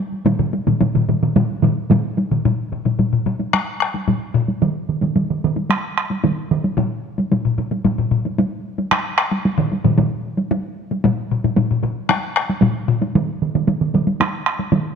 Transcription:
0.12 taiko high soft
0.25 taiko low-mid medium
0.25 taiko mid medium
0.25 taiko high medium
0.39 taiko low-mid medium
0.39 taiko mid medium
0.39 taiko high soft
0.53 taiko high medium
0.67 taiko low-mid medium
0.67 taiko mid medium
0.67 taiko high medium
0.81 taiko low-mid medium
0.81 taiko mid medium
0.81 taiko high medium
0.95 taiko low-mid medium
0.95 taiko mid medium
0.95 taiko high soft
1.09 taiko low-mid medium
1.09 taiko mid medium
1.09 taiko high medium
1.23 taiko low-mid medium
1.23 taiko mid medium
1.36 taiko low-mid loud
1.36 taiko mid medium
1.36 taiko high medium
1.50 taiko high soft
1.62 taiko low-mid medium
1.62 taiko mid loud
1.62 taiko high medium
1.77 taiko high soft
1.90 taiko low-mid medium
1.90 taiko mid loud
1.90 taiko high medium
2.04 taiko high soft
2.18 taiko high medium
2.31 taiko low-mid medium
2.31 taiko mid medium
2.31 taiko high soft
2.45 taiko low-mid medium
2.45 taiko high medium
2.73 taiko low-mid medium
2.85 taiko low-mid medium
2.85 taiko high soft
2.99 taiko low-mid medium
2.99 taiko high soft
3.13 taiko low-mid medium
3.26 taiko low-mid medium
3.26 taiko high soft
3.40 taiko high soft
3.53 taiko rim medium
3.53 taiko high soft
3.80 taiko rim medium
3.94 taiko high soft
4.08 taiko low-mid medium
4.08 taiko high medium
4.34 taiko low-mid medium
4.48 taiko high soft
4.62 taiko mid medium
4.62 taiko high medium
4.89 taiko mid medium
5.02 taiko mid medium
5.02 taiko high soft
5.16 taiko mid medium
5.16 taiko high medium
5.30 taiko mid medium
5.44 taiko mid medium
5.56 taiko high soft
5.70 taiko rim medium
5.70 taiko high medium
5.98 taiko rim medium
6.10 taiko high soft
6.24 taiko mid medium
6.24 taiko high medium
6.51 taiko mid loud
6.64 taiko high soft
6.78 taiko low-mid medium
6.78 taiko high medium
7.18 taiko high medium
7.32 taiko low-mid medium
7.32 taiko high medium
7.45 taiko low-mid medium
7.58 taiko low-mid medium
7.58 taiko high soft
7.71 taiko high medium
7.84 taiko low-mid medium
7.84 taiko high medium
7.98 taiko low-mid medium
8.11 taiko low-mid medium
8.25 taiko high soft
8.38 taiko high medium
8.78 taiko high soft
8.91 taiko rim medium
8.91 taiko high medium
9.18 taiko rim medium
9.31 taiko high medium
9.45 taiko high medium
9.58 taiko low-mid loud
9.58 taiko mid medium
9.72 taiko high soft
9.84 taiko low-mid medium
9.84 taiko mid medium
9.84 taiko high medium
9.98 taiko low-mid medium
9.98 taiko mid medium
9.98 taiko high medium
10.37 taiko high medium
10.51 taiko high medium
10.91 taiko high medium
11.04 taiko low-mid medium
11.04 taiko high medium
11.31 taiko low-mid medium
11.44 taiko low-mid medium
11.44 taiko high medium
11.57 taiko low-mid medium
11.57 taiko high medium
11.71 taiko low-mid medium
11.83 taiko low-mid medium
11.83 taiko high soft
12.09 taiko rim medium
12.09 taiko high medium
12.36 taiko rim medium
12.49 taiko high medium
12.62 taiko low-mid loud
12.62 taiko high medium
12.88 taiko low-mid loud
13.02 taiko high medium
13.15 taiko mid loud
13.15 taiko high medium
13.42 taiko mid medium
13.55 taiko mid medium
13.55 taiko high medium
13.68 taiko mid medium
13.68 taiko high medium
13.81 taiko mid medium
13.94 taiko mid loud
13.94 taiko high medium
14.07 taiko high medium
14.20 taiko rim medium
14.20 taiko high medium
14.46 taiko rim medium
14.59 taiko high medium
14.72 taiko mid medium
14.72 taiko high medium

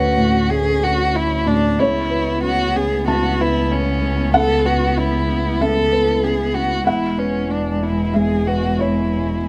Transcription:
0.00 0.47 D2 medium
0.00 1.81 D2 medium
0.00 0.17 A2 medium
0.00 1.75 A3 medium
0.00 0.37 C#4 medium
0.00 1.75 C#4 medium
0.00 0.52 F#4 medium
0.00 1.79 F#4 medium
0.00 0.81 A4 soft
0.00 1.44 B4 medium
0.00 1.80 C#5 medium
0.17 0.69 A2 medium
0.50 1.02 A3 soft
0.50 0.85 G#4 medium
0.81 1.17 F#4 medium
0.81 1.34 A4 medium
1.14 1.66 C#4 medium
1.14 1.49 E4 medium
1.46 1.79 A2 medium
1.46 1.81 D4 medium
1.79 3.05 C#2 medium
1.79 6.89 C#2 medium
1.79 6.84 A3 medium
1.79 6.85 B3 medium
1.79 6.84 B3 medium
1.79 2.43 E4 medium
1.79 6.85 E4 medium
1.79 3.05 C#5 loud
2.10 2.62 B4 medium
2.43 2.96 C#4 soft
2.43 2.78 F#4 medium
2.75 3.28 C#3 soft
2.75 3.07 G#4 medium
3.08 4.30 C#2 medium
3.08 3.42 F#4 medium
3.08 4.30 A5 medium
3.40 3.73 E4 medium
3.40 3.91 B4 medium
3.72 4.34 C#4 medium
3.72 4.22 C#4 medium
4.03 4.53 C#3 soft
4.33 5.56 C#2 medium
4.33 4.67 A4 medium
4.33 5.56 F#5 loud
4.65 4.99 F#4 medium
4.65 5.16 B4 medium
4.97 5.48 C#4 medium
4.97 5.63 E4 medium
5.28 5.79 C#3 medium
5.60 6.83 C#2 medium
5.60 6.25 A4 medium
5.60 6.83 E5 medium
5.92 6.43 B4 medium
6.23 6.74 C#4 soft
6.23 6.56 G#4 medium
6.54 6.87 C#3 soft
6.54 6.87 F#4 medium
6.86 9.48 E1 medium
6.86 8.10 E2 medium
6.86 9.48 G#3 medium
6.86 9.48 B3 medium
6.86 9.48 E4 medium
6.86 7.20 E4 medium
6.86 8.10 F#5 medium
6.86 9.48 G#5 medium
7.18 7.52 C#4 medium
7.18 7.69 B4 soft
7.49 8.01 B3 soft
7.49 7.84 D4 soft
7.81 8.34 B2 soft
7.81 8.17 E4 soft
8.13 8.67 G#3 soft
8.13 8.49 G#4 medium
8.13 8.76 E5 medium
8.47 8.82 F#4 medium
8.47 9.01 B4 soft
8.79 9.36 B3 soft
8.79 9.48 E4 soft
8.79 9.45 C#5 medium
9.15 9.48 B2 soft

